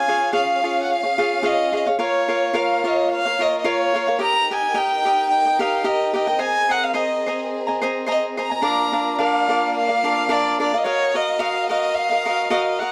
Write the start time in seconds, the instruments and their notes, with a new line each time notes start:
Already playing: violin section C#4 G#4 F5, violin G#5
0.08 cavaquinho F4 G#4 C#5 F5
0.33 cavaquinho F4 G#4 C#5 F5, violin F5
0.64 cavaquinho F4 G#4 C#5 F5
0.83 violin F#5
0.90 violin F5
1.03 cavaquinho G#4 C#5 F5
1.18 cavaquinho F4 G#4 C#5 F5
1.43 cavaquinho F4 G#4 C#5 F5, violin D#5
1.72 cavaquinho F4 G#4 C#5 F5, violin D#5
1.86 cavaquinho G#4 C#5 F5
1.98 violin section A#3 F4 C#5, cavaquinho F4 A#4 C#5 F5
2.02 violin C#5
2.28 cavaquinho F4 A#4 C#5 F5
2.53 cavaquinho F4 A#4 C#5 F5, violin F5
2.84 cavaquinho F4 A#4 C#5 F5, violin D#5
3.11 violin F5
3.25 cavaquinho A#4 C#5 F5
3.39 cavaquinho F4 A#4 C#5 F5, violin D#5
3.59 violin D#5
3.64 cavaquinho F4 A#4 C#5 F5, violin C#5
3.94 cavaquinho F4 A#4 C#5 F5
4.07 cavaquinho A#4 C#5 F5
4.19 violin section D#4 A#4 G5, cavaquinho G4 A#4 D#5 G5, violin A#5
4.45 violin A#5
4.50 cavaquinho G4 A#4 D#5 G5, violin G#5
4.74 cavaquinho G4 A#4 D#5 G5, violin G5
5.05 cavaquinho G4 A#4 D#5 G5
5.29 violin G5
5.45 cavaquinho A#4 D#5 G5
5.59 cavaquinho G4 A#4 D#5 G5, violin F5
5.84 cavaquinho G4 A#4 D#5 G5, violin D#5
6.13 cavaquinho G4 A#4 D#5 G5, violin D#5
6.27 cavaquinho A#4 D#5 G5
6.39 violin section C4 G#4, cavaquinho C5 D#5 G#5 A#5, violin G#5
6.69 cavaquinho C5 D#5 G#5 A#5, violin F#5
6.84 violin F5
6.94 cavaquinho C5 D#5 G#5 A#5, violin D#5
7.26 cavaquinho C5 D#5 G#5 A#5
7.67 cavaquinho D#5 G#5 A#5
7.82 cavaquinho C5 D#5 G#5 A#5
8.06 cavaquinho C5 D#5 G#5 A#5
8.11 violin D#5
8.37 cavaquinho C5 D#5 G#5 A#5
8.42 violin A#5
8.50 cavaquinho D#5 G#5 A#5
8.62 violin section A#3 F4 D5, cavaquinho D4 A#4 D5 F5
8.93 cavaquinho D4 A#4 D5 F5
9.18 cavaquinho D4 A#4 D5 F5, violin F5
9.48 cavaquinho D4 A#4 D5 F5
9.77 violin F5
9.87 cavaquinho A#4 D5 F5
10.04 cavaquinho D4 A#4 D5 F5
10.29 cavaquinho D4 A#4 D5 F5, violin D5
10.60 cavaquinho D4 A#4 D5 F5, violin D5
10.72 cavaquinho A#4 D5 F5
10.78 violin D#5, violin section F5
10.82 violin section F#4 D#5, cavaquinho F#4 A#4 D#5 F5, violin C#5
11.14 cavaquinho F#4 A#4 D#5 F5, violin D#5
11.39 cavaquinho F#4 A#4 D#5 F5, violin F5
11.69 cavaquinho F#4 A#4 D#5 F5, violin D#5
11.95 violin F5
12.09 cavaquinho A#4 D#5 F5
12.26 cavaquinho F#4 A#4 D#5 F5
12.50 cavaquinho F#4 A#4 D#5 F5, violin D#5
12.79 cavaquinho F#4 A#4 D#5 F5, violin F#5